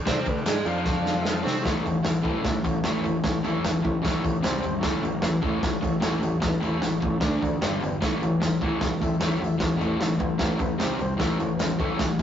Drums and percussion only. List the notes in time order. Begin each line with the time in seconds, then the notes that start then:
0.07 kick, snare, crash
0.16 tambourine
0.26 kick, tambourine
0.37 tambourine
0.46 snare, tambourine, crash
0.66 tambourine
0.85 kick, snare, tambourine
0.96 tambourine
1.06 snare, tambourine
1.17 tambourine
1.25 snare, tambourine
1.46 snare, tambourine
1.57 tambourine
1.65 kick, snare, floor tom
1.75 tambourine
1.86 floor tom, tambourine
2.05 snare, floor tom, tambourine
2.25 kick, floor tom
2.45 kick, snare, floor tom, tambourine
2.64 kick, floor tom, tambourine
2.75 tambourine
2.84 snare, floor tom, tambourine
3.04 floor tom, tambourine
3.24 kick, snare, floor tom, tambourine
3.34 tambourine
3.44 floor tom, tambourine
3.64 snare, floor tom, tambourine
3.85 kick, floor tom
4.05 kick, snare, floor tom, tambourine
4.24 kick, floor tom, tambourine
4.35 tambourine
4.44 snare, floor tom, tambourine
4.63 floor tom, tambourine
4.83 kick, snare, floor tom
4.95 tambourine
5.03 floor tom, tambourine
5.22 snare, floor tom, tambourine
5.42 kick, floor tom, tambourine
5.63 kick, snare, floor tom, tambourine
5.82 kick, floor tom, tambourine
5.92 tambourine
6.02 snare, floor tom, tambourine
6.23 floor tom, tambourine
6.42 kick, snare, floor tom
6.54 tambourine
6.63 floor tom, tambourine
6.82 snare, floor tom, tambourine
7.02 kick, floor tom
7.21 kick, snare, floor tom, tambourine
7.42 kick, floor tom, tambourine
7.62 snare, floor tom, tambourine
7.83 floor tom, tambourine
8.02 kick, snare, floor tom
8.13 tambourine
8.23 floor tom, tambourine
8.42 snare, floor tom, tambourine
8.61 kick, floor tom, tambourine
8.81 kick, snare, floor tom, tambourine
9.02 kick, floor tom, tambourine
9.14 tambourine
9.21 snare, floor tom, tambourine
9.42 floor tom, tambourine
9.60 kick, snare, floor tom
9.72 tambourine
9.81 floor tom, tambourine
10.01 snare, floor tom, tambourine
10.20 kick, floor tom
10.39 kick, snare, floor tom, tambourine
10.59 kick, floor tom, tambourine
10.80 snare, floor tom, tambourine
10.99 floor tom, tambourine
11.20 kick, snare, floor tom
11.29 tambourine
11.40 floor tom, tambourine
11.59 snare, floor tom, tambourine
11.80 kick, floor tom, tambourine
11.99 kick, snare, floor tom, tambourine
12.19 floor tom